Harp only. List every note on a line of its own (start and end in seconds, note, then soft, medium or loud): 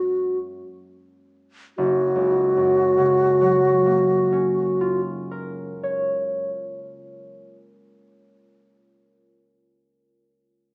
0.00 0.59 F#2 soft
0.00 0.59 G#3 soft
0.00 0.61 A#3 soft
0.00 0.62 C#4 soft
0.00 0.63 F#4 soft
1.78 5.68 F#1 soft
2.16 6.06 C#2 soft
2.57 6.47 F#2 soft
2.98 6.88 C#3 soft
3.41 7.11 F#3 soft
3.86 7.09 A#3 soft
4.32 7.56 C#4 soft
4.81 8.04 F4 soft
5.31 8.55 A#4 soft
5.83 8.71 C#5 soft